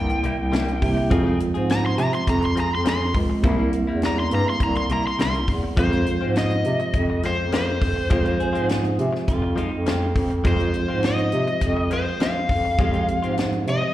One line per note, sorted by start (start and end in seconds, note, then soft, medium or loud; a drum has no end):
0.00 0.21 C2 medium
0.00 0.78 G3 medium
0.00 0.78 A#3 medium
0.00 0.78 C4 medium
0.00 0.79 E4 medium
0.00 1.37 G5 loud
0.09 muted clean electric guitar stroke soft
0.09 closed hi-hat soft
0.23 0.38 C3 medium
0.23 0.38 G3 medium
0.23 0.38 A#3 medium
0.23 0.36 E4 medium
0.23 closed hi-hat medium
0.38 0.78 C2 medium
0.38 muted clean electric guitar stroke soft
0.52 0.70 C3 medium
0.52 0.71 G3 medium
0.52 0.71 A#3 medium
0.52 0.71 E4 medium
0.52 snare loud
0.52 closed hi-hat medium
0.68 closed hi-hat soft
0.82 1.08 C3 medium
0.82 1.11 G3 medium
0.82 1.11 A#3 medium
0.82 1.10 C4 medium
0.82 1.12 E4 medium
0.82 muted clean electric guitar stroke soft
0.82 kick medium
0.82 open hi-hat medium
0.97 muted clean electric guitar stroke medium
1.10 1.38 F2 loud
1.10 3.40 F3 medium
1.10 1.26 F3 medium
1.10 3.40 G#3 medium
1.10 1.25 C4 medium
1.10 3.41 C4 medium
1.10 1.25 F4 medium
1.10 3.41 F4 medium
1.10 1.24 G#4 medium
1.10 kick loud
1.10 closed hi-hat medium
1.25 1.39 F3 medium
1.25 1.40 C4 medium
1.25 1.40 F4 medium
1.25 1.40 G#4 medium
1.40 closed hi-hat medium
1.54 1.94 G#2 medium
1.54 1.69 C4 soft
1.54 1.69 F4 soft
1.54 1.69 G#4 medium
1.54 closed hi-hat soft
1.69 1.85 A#5 loud
1.69 muted clean electric guitar stroke soft
1.69 snare loud
1.69 closed hi-hat medium
1.84 1.99 C6 loud
1.84 muted clean electric guitar stroke soft
1.97 2.11 C3 loud
1.97 2.14 A#5 loud
1.97 snare soft
1.97 closed hi-hat medium
2.13 2.28 C6 medium
2.13 muted clean electric guitar stroke soft
2.13 closed hi-hat soft
2.27 2.54 F2 loud
2.27 2.43 A#5 medium
2.27 kick medium
2.27 closed hi-hat medium
2.41 muted clean electric guitar stroke soft
2.41 closed hi-hat soft
2.46 2.58 C6 medium
2.55 2.71 F3 medium
2.55 2.71 C4 medium
2.55 2.71 F4 medium
2.55 2.70 G#4 medium
2.55 closed hi-hat medium
2.60 2.73 A#5 medium
2.71 3.11 F2 medium
2.71 2.87 C6 loud
2.71 muted clean electric guitar stroke soft
2.84 3.03 F3 medium
2.84 3.03 C4 medium
2.84 3.04 F4 medium
2.84 3.04 G#4 loud
2.84 snare loud
2.84 closed hi-hat medium
2.89 3.16 C6 loud
3.14 3.41 C#2 medium
3.14 muted clean electric guitar stroke soft
3.14 kick medium
3.14 open hi-hat medium
3.30 muted clean electric guitar stroke medium
3.43 3.71 C2 loud
3.43 3.59 C3 medium
3.43 5.73 G3 medium
3.43 3.58 G3 medium
3.43 5.73 A#3 medium
3.43 3.58 A#3 medium
3.43 5.74 C4 medium
3.43 5.74 E4 medium
3.43 3.57 E4 loud
3.43 kick loud
3.43 closed hi-hat medium
3.58 3.71 C3 medium
3.58 3.72 G3 medium
3.58 3.72 A#3 medium
3.58 3.73 E4 medium
3.72 muted clean electric guitar stroke soft
3.72 closed hi-hat medium
3.87 4.27 E2 medium
3.87 4.01 G3 soft
3.87 4.02 A#3 medium
3.87 4.02 E4 soft
4.02 muted clean electric guitar stroke soft
4.02 snare loud
4.02 closed hi-hat medium
4.06 4.19 A#5 loud
4.17 4.33 C6 medium
4.17 muted clean electric guitar stroke soft
4.31 4.45 G2 loud
4.31 4.48 A#5 loud
4.31 closed hi-hat medium
4.46 4.62 C6 medium
4.46 muted clean electric guitar stroke soft
4.60 4.87 C2 loud
4.60 4.77 A#5 loud
4.60 kick medium
4.60 closed hi-hat medium
4.75 4.90 C6 medium
4.75 muted clean electric guitar stroke soft
4.75 closed hi-hat soft
4.89 5.05 C3 medium
4.89 5.05 G3 medium
4.89 5.05 A#3 medium
4.89 5.03 E4 medium
4.89 5.06 A#5 medium
4.89 closed hi-hat medium
5.05 5.20 C6 medium
5.05 muted clean electric guitar stroke soft
5.19 5.46 C2 medium
5.19 5.37 C3 medium
5.19 5.37 G3 medium
5.19 5.38 A#3 medium
5.19 5.38 E4 medium
5.19 5.49 C6 loud
5.19 snare loud
5.19 closed hi-hat medium
5.34 closed hi-hat soft
5.48 5.75 E2 medium
5.48 muted clean electric guitar stroke soft
5.48 kick medium
5.48 open hi-hat medium
5.63 muted clean electric guitar stroke soft
5.76 6.04 F2 medium
5.76 8.07 F3 medium
5.76 5.92 F3 medium
5.76 8.07 G#3 medium
5.76 5.92 G#3 medium
5.76 8.07 C4 medium
5.76 5.92 C4 medium
5.76 5.91 F4 medium
5.76 8.08 F4 medium
5.76 6.35 C5 medium
5.76 kick loud
5.76 closed hi-hat medium
5.92 6.05 F3 medium
5.92 6.06 G#3 medium
5.92 6.06 C4 medium
5.92 6.07 F4 medium
5.92 closed hi-hat soft
6.06 closed hi-hat medium
6.21 6.61 G#2 medium
6.21 6.35 G#3 soft
6.21 6.36 C4 soft
6.21 6.36 F4 soft
6.36 7.22 D#5 medium
6.36 muted clean electric guitar stroke soft
6.36 snare loud
6.36 closed hi-hat medium
6.50 muted clean electric guitar stroke soft
6.50 closed hi-hat soft
6.65 6.79 C3 medium
6.65 closed hi-hat medium
6.79 muted clean electric guitar stroke soft
6.79 closed hi-hat soft
6.93 7.21 F2 medium
6.93 kick medium
6.93 closed hi-hat medium
7.10 muted clean electric guitar stroke soft
7.23 7.39 F3 medium
7.23 7.38 G#3 medium
7.23 7.38 C4 medium
7.23 7.37 F4 medium
7.23 7.53 C5 medium
7.23 snare soft
7.23 closed hi-hat medium
7.38 7.78 F2 medium
7.38 muted clean electric guitar stroke soft
7.52 7.70 F3 medium
7.52 7.71 G#3 medium
7.52 7.71 C4 medium
7.52 7.71 F4 medium
7.52 8.67 C5 loud
7.52 snare loud
7.52 closed hi-hat medium
7.82 8.08 F2 medium
7.82 muted clean electric guitar stroke soft
7.82 kick medium
7.82 open hi-hat medium
7.96 muted clean electric guitar stroke soft
8.10 8.37 F2 medium
8.10 8.25 F3 medium
8.10 10.41 F3 medium
8.10 8.25 G#3 medium
8.10 10.41 G#3 medium
8.10 8.24 C4 medium
8.10 10.41 C4 medium
8.10 8.23 F4 medium
8.10 10.42 F4 medium
8.10 kick loud
8.10 closed hi-hat medium
8.24 8.38 F3 medium
8.24 8.39 G#3 medium
8.24 8.39 C4 medium
8.24 8.39 F4 medium
8.24 closed hi-hat soft
8.39 9.25 G#4 medium
8.39 muted clean electric guitar stroke soft
8.39 closed hi-hat medium
8.53 8.95 G#2 medium
8.53 8.67 G#3 soft
8.53 8.68 C4 medium
8.53 8.68 F4 medium
8.53 closed hi-hat soft
8.68 muted clean electric guitar stroke soft
8.68 snare loud
8.68 closed hi-hat medium
8.83 muted clean electric guitar stroke medium
8.83 closed hi-hat soft
8.99 9.12 C3 loud
8.99 closed hi-hat medium
9.13 muted clean electric guitar stroke medium
9.13 snare soft
9.28 9.55 F2 medium
9.28 9.56 F4 medium
9.28 kick medium
9.28 closed hi-hat medium
9.42 muted clean electric guitar stroke medium
9.56 9.71 F3 medium
9.56 9.72 G#3 medium
9.56 9.71 C4 medium
9.56 9.86 D#4 medium
9.56 9.71 F4 medium
9.56 closed hi-hat medium
9.72 10.12 F2 medium
9.72 muted clean electric guitar stroke soft
9.86 10.04 F3 medium
9.86 10.05 G#3 medium
9.86 10.30 C4 medium
9.86 10.05 C4 medium
9.86 10.05 F4 medium
9.86 snare loud
9.86 closed hi-hat medium
10.15 10.42 F2 medium
10.15 muted clean electric guitar stroke soft
10.15 kick medium
10.15 open hi-hat medium
10.30 muted clean electric guitar stroke soft
10.30 closed hi-hat soft
10.44 10.72 F2 loud
10.44 10.59 F3 medium
10.44 12.74 F3 medium
10.44 10.59 G#3 medium
10.44 12.75 G#3 medium
10.44 10.59 C4 medium
10.44 12.75 C4 medium
10.44 10.58 F4 medium
10.44 12.76 F4 medium
10.44 11.03 C5 medium
10.44 kick loud
10.44 closed hi-hat medium
10.59 10.73 F3 medium
10.59 10.74 G#3 medium
10.59 10.74 C4 medium
10.59 10.74 F4 medium
10.59 closed hi-hat soft
10.74 muted clean electric guitar stroke soft
10.74 closed hi-hat medium
10.88 11.29 G#2 medium
10.88 11.03 G#3 soft
10.88 11.03 C4 soft
10.88 11.03 F4 medium
11.03 11.89 D#5 medium
11.03 muted clean electric guitar stroke soft
11.03 snare loud
11.03 closed hi-hat medium
11.18 muted clean electric guitar stroke soft
11.18 closed hi-hat soft
11.32 11.46 C3 medium
11.32 closed hi-hat medium
11.47 muted clean electric guitar stroke soft
11.47 closed hi-hat soft
11.61 11.88 F2 medium
11.61 kick medium
11.61 closed hi-hat medium
11.77 muted clean electric guitar stroke soft
11.91 12.06 F3 medium
11.91 12.06 G#3 medium
11.91 12.06 C4 medium
11.91 12.05 F4 medium
11.91 12.21 C5 medium
11.91 closed hi-hat medium
12.06 muted clean electric guitar stroke soft
12.20 12.38 F3 medium
12.20 12.39 G#3 medium
12.20 12.39 C4 medium
12.20 12.39 F4 medium
12.20 13.35 F5 medium
12.20 snare loud
12.20 closed hi-hat medium
12.49 12.76 F2 medium
12.49 muted clean electric guitar stroke soft
12.49 kick medium
12.49 open hi-hat medium
12.65 muted clean electric guitar stroke soft
12.78 13.05 F2 medium
12.78 13.94 F3 medium
12.78 12.94 F3 medium
12.78 13.94 G#3 medium
12.78 12.94 G#3 medium
12.78 13.94 C4 medium
12.78 12.94 C4 medium
12.78 12.93 F4 medium
12.78 13.94 G4 medium
12.78 kick loud
12.78 closed hi-hat medium
12.94 13.06 F3 medium
12.94 13.07 G#3 medium
12.94 13.08 C4 medium
12.94 13.08 F4 medium
12.94 closed hi-hat soft
13.08 muted clean electric guitar stroke soft
13.08 closed hi-hat medium
13.23 13.63 G#2 medium
13.23 13.37 G#3 soft
13.23 13.37 C4 medium
13.23 13.37 F4 medium
13.23 closed hi-hat soft
13.37 muted clean electric guitar stroke soft
13.37 snare loud
13.37 closed hi-hat medium
13.53 muted clean electric guitar stroke soft
13.53 closed hi-hat soft
13.67 13.80 C3 medium
13.67 13.94 D#5 loud
13.67 closed hi-hat medium
13.81 muted clean electric guitar stroke soft